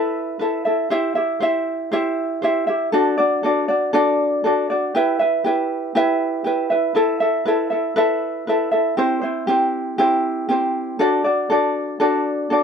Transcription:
Already playing: E4 A4 B4 E5
0.39 E4 A4 B4 E5
0.65 E4 A4 E5
0.90 E4 G4 C5 E5
1.15 E4 G4 E5
1.40 E4 G4 C5 E5
1.92 E4 G4 C5 E5
2.42 E4 G4 C5 E5
2.67 E4 G4 E5
2.92 D4 F#4 A4 D5
3.18 D4 F#4 D5
3.43 D4 F#4 A4 D5
3.68 D4 F#4 D5
3.93 D4 F#4 A4 D5
4.44 D4 F#4 A4 D5
4.70 D4 F#4 D5
4.95 E4 G4 B4 E5
5.19 E4 B4 E5
5.44 E4 G4 B4 E5
5.95 E4 G4 B4 E5
6.44 E4 G4 B4 E5
6.70 E4 B4 E5
6.95 E4 A4 B4 E5
7.20 E4 A4 E5
7.45 E4 A4 B4 E5
7.70 E4 A4 E5
7.96 E4 A4 B4 E5
8.47 E4 A4 B4 E5
8.71 E4 A4 E5
8.97 C4 E4 G4 C5
9.22 C4 E4 C5
9.47 C4 E4 G4 C5
9.98 C4 E4 G4 C5
10.49 C4 E4 G4 C5
10.99 D4 F#4 A4 D5
11.24 D4 F#4 D5
11.50 D4 F#4 A4 D5
12.00 D4 F#4 A4 D5
12.50 D4 F#4 A4 D5

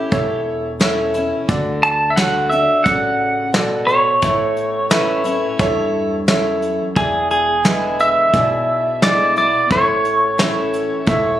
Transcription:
Already playing: C#4 E4 G4
0.11 E1 E2 E4 A4 C#5, kick, closed hi-hat
0.80 E3 A3 C#4 E4 A4 C#5, snare, closed hi-hat
1.14 C#4 E4, closed hi-hat
1.48 D2 D3 F#4 A4 D5, kick, closed hi-hat
1.83 A5, closed hi-hat
2.10 E5
2.16 D3 A3 D4 F#4 A4 C#5 F#5, snare, closed hi-hat
2.50 D4 F#4 E5, closed hi-hat
2.84 A1 C#3 F#4 A4 D5 F#5, kick, closed hi-hat
3.54 B2 F#4 A4 D5, snare, closed hi-hat
3.87 C#5, closed hi-hat
4.22 A1 A2 E4 A4 C#5, kick, closed hi-hat
4.57 closed hi-hat
4.90 E3 A3 C#4 E4 A4 B4, snare, closed hi-hat
5.24 C#4 E4, closed hi-hat
5.59 E2 G2 E4 A4 C#5, kick, closed hi-hat
6.28 F#2 E4 A4 C#5, snare, closed hi-hat
6.62 closed hi-hat
6.96 E1 E2 E4 G#4 D5, kick, closed hi-hat
7.31 G#4, closed hi-hat
7.64 D3 G#3 B3 E4 G#4 B4, snare, closed hi-hat
7.99 E5, closed hi-hat
8.34 B1 B2 E4 G#4 D5, kick, closed hi-hat
9.02 D3 G#3 B3 E4 G#4 D5, snare, closed hi-hat
9.36 B3 E4 D5, closed hi-hat
9.71 A1 A2 E4 A4 C#5, kick, closed hi-hat
10.05 closed hi-hat
10.38 E3 A3 C#4 E4 A4 C#5, snare, closed hi-hat
10.74 closed hi-hat
11.07 E1 E2 E4 A4 E5, kick, closed hi-hat

